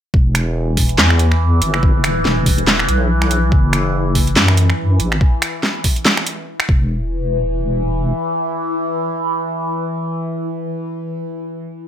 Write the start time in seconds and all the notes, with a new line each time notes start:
0.14 E1 E3, kick
0.35 finger snap, closed hi-hat
0.77 kick, open hi-hat
0.89 closed hi-hat
0.98 E2, snare, clap
1.10 finger snap
1.19 closed hi-hat
1.32 finger snap
1.62 G1, closed hi-hat
1.74 finger snap
1.83 kick
2.04 finger snap, closed hi-hat
2.25 E1, snare
2.46 kick, open hi-hat
2.58 closed hi-hat
2.67 snare, clap
2.79 finger snap
2.88 B1, closed hi-hat
3.22 finger snap
3.31 closed hi-hat
3.52 F#1, kick
3.73 finger snap, closed hi-hat
4.15 kick, open hi-hat
4.27 closed hi-hat
4.36 F#2, snare, clap
4.48 finger snap
4.57 closed hi-hat
4.70 finger snap
5.00 A1, closed hi-hat
5.12 finger snap
5.21 kick
5.42 finger snap, closed hi-hat
5.63 snare
5.84 kick, open hi-hat
5.96 closed hi-hat
6.05 snare, clap
6.17 finger snap
6.27 closed hi-hat
6.60 finger snap
6.69 E1 E3, kick